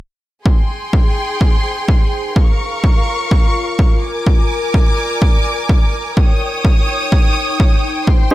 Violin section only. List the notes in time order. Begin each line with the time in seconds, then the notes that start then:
0.45 G#4 G5 C6
2.36 A#4 F5 C#6
4.03 A#4 G#5 D6
6.17 C#5 G5 D#6
8.07 C5 C6